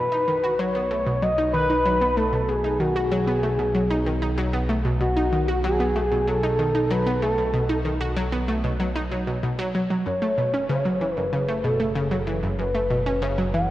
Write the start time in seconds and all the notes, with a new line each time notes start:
Already playing: B1 B4
0.12 D#4
0.27 D#3
0.43 F#4
0.59 F#3 C#5
0.75 B3
0.91 A3
1.06 B2
1.22 F#3 D#5
1.38 D#4
1.53 D#3 B4
1.69 D#4
1.85 F#3
2.01 B3
2.16 A3 A4
2.33 B2
2.48 B2 G#4
2.64 D#4
2.80 D#3 F#4
2.96 F#4
3.11 F#3 G#4
3.27 B3
3.43 A3
3.59 B2
3.75 F#3
3.90 D#4
4.06 D#3
4.22 D#4
4.38 F#3
4.54 B3
4.69 A3
4.85 B2
5.01 B2 F#4
5.17 D#4
5.33 D#3
5.48 F#4
5.64 F#3 G#4
5.80 B3
5.96 A3
6.12 B2
6.27 F#3 A4
6.43 D#4
6.59 D#3
6.75 D#4
6.90 F#3 B4
7.06 B3
7.22 A3 A4
7.38 B2
7.53 B2
7.69 D#4
7.85 D#3
8.01 F#4
8.17 F#3
8.32 B3
8.48 A3
8.64 B2
8.80 F#3
8.96 D#4
9.12 F#3
9.27 B2
9.43 B2
9.59 F#3
9.75 F#3
9.90 F#3
10.06 F#1 F#2 C#5
10.22 A3
10.38 B2
10.54 C#4
10.69 C#3 C#5
10.85 F#3
11.01 E3
11.15 F#2 B4
11.33 C#3 B4
11.48 A3
11.64 B2 A4
11.80 A3
11.96 C#3
12.11 F#3
12.27 E3
12.43 F#2
12.59 F#2 B4
12.75 A3
12.90 B2
13.06 C#4
13.22 C#3 C#5
13.38 F#3
13.53 E3 F#5